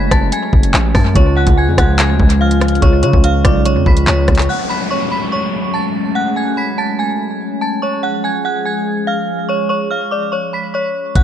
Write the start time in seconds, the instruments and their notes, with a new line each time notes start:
Already playing: 808-style bass F#1, ambient pad F#3 C#4, tine electric piano G#3 A3 F#4
0.10 808-style bass F#1, tine electric piano G#3 A3 F#4, synth bell A5 A6, kick, cross-stick, closed hi-hat
0.32 synth bell G#5 G#6, closed hi-hat
0.53 808-style bass F#1, kick
0.63 closed hi-hat
0.74 808-style bass A1, clap
0.95 808-style bass F#2, synth bell A5 A6, kick, cross-stick, open hi-hat
1.14 808-style bass C#2, tine electric piano C#3 G#3, ambient pad F3 G#3, synth bell C#5 C#6, kick, closed hi-hat
1.18 tine electric piano F4
1.37 synth bell F#5 F#6
1.45 808-style bass C#2, tine electric piano C#3 G#3 F4, kick, closed hi-hat
1.58 synth bell G#5 G#6
1.68 808-style bass F2
1.76 808-style bass C#2, tine electric piano C#3 G#3 F4, synth bell F#5 F#6, kick, cross-stick, closed hi-hat
1.99 synth bell G#5 G#6, clap, closed hi-hat
2.09 808-style bass D2
2.20 808-style bass C#2, kick
2.30 closed hi-hat
2.41 synth bell F5 F6
2.51 closed hi-hat
2.61 cross-stick, closed hi-hat
2.68 closed hi-hat
2.75 closed hi-hat
2.80 808-style bass C#2, tine electric piano C#3 G#3 F4, synth bell C#5 C#6, kick, closed hi-hat
3.03 808-style bass C#3, synth bell C#5 C#6, closed hi-hat
3.11 808-style bass C#2, tine electric piano C#3 G#3 F4, kick
3.24 synth bell F5 F6, closed hi-hat
3.42 808-style bass B1, tine electric piano C#3 G#3, synth bell D5 D6, kick, cross-stick, closed hi-hat
3.47 tine electric piano F4
3.65 synth bell C#5 C#6, closed hi-hat
3.76 808-style bass F2
3.86 808-style bass C#2, synth bell B5 B6, kick
3.97 closed hi-hat
4.07 808-style bass C#2, synth bell C#5 C#6, clap
4.28 808-style bass C#2, kick, cross-stick, closed hi-hat
4.35 clap, closed hi-hat
4.42 closed hi-hat
4.49 ambient pad F#3 G#3 A3 C#4, synth bell F#5 F#6, downlifter
4.70 synth bell B5 B6
4.91 synth bell C#5 C#6
5.12 synth bell B5 B6
5.32 synth bell C#5 C#6
5.74 synth bell A5 A6
6.15 synth bell F#5 F#6
6.36 synth bell G#5 G#6
6.57 synth bell B5 B6
6.78 synth bell A5 A6
6.99 synth bell G#5 G#6
7.61 synth bell A5 A6
7.82 ambient pad F3 G#3 G#4, synth bell C#5 C#6
8.03 synth bell F#5 F#6
8.24 synth bell G#5 G#6
8.45 synth bell F#5 F#6
8.66 synth bell G#5 G#6
9.07 synth bell F5 F6
9.49 synth bell C#5 C#6
9.69 synth bell C#5 C#6
9.91 synth bell F5 F6
10.11 synth bell D5 D6
10.32 synth bell C#5 C#6
10.53 synth bell B5 B6
10.74 synth bell C#5 C#6
11.15 808-style bass F#1, synth bell F#5 F#6, kick, closed hi-hat